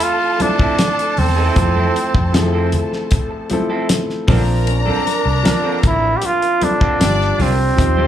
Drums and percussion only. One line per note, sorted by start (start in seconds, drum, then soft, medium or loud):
0.00 closed hi-hat medium
0.40 closed hi-hat medium
0.40 high conga medium
0.59 kick loud
0.79 snare loud
0.79 closed hi-hat loud
0.79 muted conga soft
0.99 closed hi-hat medium
1.17 open hi-hat medium
1.17 high conga medium
1.17 low conga medium
1.56 kick loud
1.56 closed hi-hat loud
1.76 high conga medium
1.96 closed hi-hat medium
1.96 muted conga soft
2.15 kick loud
2.34 snare loud
2.34 closed hi-hat loud
2.72 closed hi-hat medium
2.72 muted conga soft
2.72 low conga medium
2.93 snare soft
3.11 kick loud
3.11 closed hi-hat medium
3.50 closed hi-hat medium
3.50 muted conga soft
3.50 high conga medium
3.89 snare loud
3.89 closed hi-hat loud
3.89 muted conga soft
4.10 snare soft
4.28 kick loud
4.28 open hi-hat medium
4.28 muted conga soft
4.28 high conga medium
4.28 low conga medium
4.67 closed hi-hat medium
4.67 muted conga soft
4.87 high conga medium
5.07 closed hi-hat medium
5.07 muted conga soft
5.45 snare loud
5.45 closed hi-hat loud
5.83 kick loud
5.83 closed hi-hat medium
5.83 muted conga soft
5.83 low conga medium
6.22 closed hi-hat medium
6.22 muted conga soft
6.42 closed hi-hat soft
6.62 closed hi-hat medium
6.62 muted conga soft
6.62 high conga medium
6.81 kick medium
7.01 snare loud
7.01 closed hi-hat loud
7.21 snare soft
7.40 open hi-hat medium
7.40 high conga medium
7.40 low conga medium
7.78 kick loud
7.78 closed hi-hat medium
7.97 high conga medium